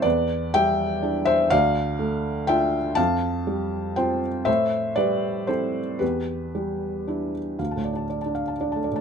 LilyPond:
<<
  \new Staff \with { instrumentName = "Felt piano" } { \time 3/4 \key d \dorian \tempo 4 = 120 <b' d''>4 <e'' g''>4. <c'' e''>8 | <d'' f''>2 <e'' g''>4 | <f'' a''>2 <c'' g''>8 r8 | <c'' e''>4 <b' d''>4 <a' c''>4 |
<g' b'>2~ <g' b'>8 r8 | f''16 a''16 d''16 a''16 d''16 a''16 f''16 a''16 d''16 a''16 d''16 a''16 | }
  \new Staff \with { instrumentName = "Felt piano" } { \time 3/4 \key d \dorian e,4 g4 <d' e'>4 | d,4 a4 <d' f'>4 | f,4 g4 <c' f'>4 | a,4 g4 <c' e'>4 |
e,4 g4 <d' e'>4 | \tuplet 3/2 { d,8 a,8 d'8~ d'8 d'4 d'8 a8 a,8 } | }
>>